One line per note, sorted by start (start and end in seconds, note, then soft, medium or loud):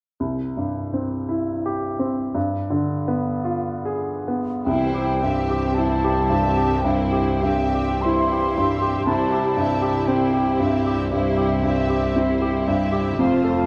0.20 2.32 C2 soft
0.57 1.16 G2 soft
0.93 1.52 C4 soft
1.29 1.86 E4 soft
1.66 2.22 G4 soft
1.99 2.35 C4 soft
2.35 4.62 G2 soft
2.70 3.30 D3 soft
3.08 3.70 B3 soft
3.45 4.11 F4 soft
3.85 4.52 G#4 soft
4.28 4.67 B3 soft
4.64 9.02 C2 soft
4.64 6.80 C2 soft
4.64 9.03 C2 soft
4.64 5.19 G3 soft
4.64 9.03 C4 soft
4.64 5.18 E4 soft
4.64 5.76 G5 medium
4.68 9.03 E3 soft
4.68 5.20 E4 soft
4.68 5.20 C5 soft
4.94 5.39 G4 soft
5.23 5.67 G2 soft
5.23 5.77 C4 soft
5.23 5.77 G4 soft
5.23 5.78 G4 soft
5.23 5.77 E5 soft
5.50 5.93 G4 soft
5.74 6.30 G3 soft
5.74 6.19 E4 soft
5.74 6.30 E4 soft
5.74 6.30 C5 soft
5.74 6.83 A5 medium
6.04 6.46 G4 soft
6.29 6.73 G2 soft
6.29 6.84 C4 soft
6.29 6.84 G4 soft
6.29 6.84 E5 soft
6.57 7.01 G4 soft
6.82 7.31 G2 soft
6.82 7.39 G3 soft
6.82 7.39 E4 soft
6.82 7.40 C5 soft
6.82 8.03 G5 soft
6.86 7.40 E4 soft
7.12 7.61 G4 soft
7.42 7.91 G2 soft
7.42 8.02 C4 soft
7.42 8.02 G4 soft
7.42 8.03 G4 soft
7.42 8.02 E5 soft
7.74 8.20 G4 soft
8.02 8.56 G3 soft
8.02 8.56 E4 soft
8.02 8.47 E4 soft
8.02 8.56 C5 soft
8.02 9.05 C6 medium
8.32 8.72 G4 soft
8.55 8.97 G2 soft
8.55 9.07 C4 soft
8.55 9.06 G4 soft
8.55 9.04 G4 soft
8.55 9.07 E5 soft
8.82 9.07 G4 soft
9.05 13.16 C2 soft
9.05 11.10 C2 soft
9.05 13.16 C2 soft
9.05 13.02 G3 soft
9.05 13.02 C4 soft
9.05 9.53 E4 soft
9.05 9.54 E4 soft
9.05 9.53 G4 soft
9.05 9.54 C5 soft
9.05 10.09 A5 medium
9.32 9.73 G4 soft
9.56 9.98 G2 soft
9.56 10.09 C4 soft
9.56 10.09 E4 soft
9.56 10.09 G4 soft
9.56 10.09 E5 soft
9.82 10.24 G4 soft
10.07 10.50 C4 soft
10.07 10.61 E4 soft
10.07 10.60 E4 soft
10.07 10.62 G4 soft
10.07 10.61 C5 soft
10.07 10.86 G5 soft
10.34 10.76 G4 soft
10.59 11.02 G2 soft
10.59 11.14 C4 soft
10.59 11.10 E4 soft
10.59 11.13 G4 soft
10.59 11.13 E5 soft
10.86 11.29 G4 soft
11.11 11.54 G2 soft
11.11 11.61 E4 soft
11.11 11.62 E4 soft
11.11 11.61 G4 soft
11.11 11.61 C5 soft
11.11 13.15 E5 soft
11.37 11.80 G4 soft
11.63 12.06 G2 soft
11.63 12.17 C4 soft
11.63 12.15 E4 soft
11.63 12.17 G4 soft
11.63 12.18 E5 soft
11.89 12.32 G4 soft
12.15 12.58 C4 soft
12.15 12.64 E4 soft
12.15 12.69 E4 soft
12.15 12.67 G4 soft
12.15 12.69 C5 soft
12.42 12.83 G4 soft
12.65 13.09 G2 soft
12.65 13.18 C4 soft
12.65 13.19 E4 soft
12.65 13.20 G4 soft
12.65 13.20 E5 soft
12.92 13.19 G4 soft
13.18 13.66 F1 soft
13.18 13.66 F2 soft
13.18 13.66 A3 soft
13.18 13.66 C4 soft
13.18 13.66 F4 soft
13.18 13.66 C5 soft
13.18 13.66 F5 medium
13.44 13.66 A4 soft